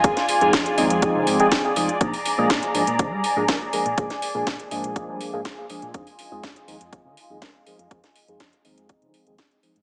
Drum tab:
HH |xxoxxxoxx-oxx-ox|xoo-xxoxx-o-x-ox|xxo-xxoxx-o-x-ox|xoo-xxoxx-o-x-ox|
SD |-o--o-------o---|----o-------o---|-o--o-------o---|----o-------o---|
BD |o---o---o---o---|o---o---o---o---|o---o---o---o---|o---o---o---o---|

HH |xxoxxxoxxxoxxxox|
SD |-o--o-------o---|
BD |o---o---o---o---|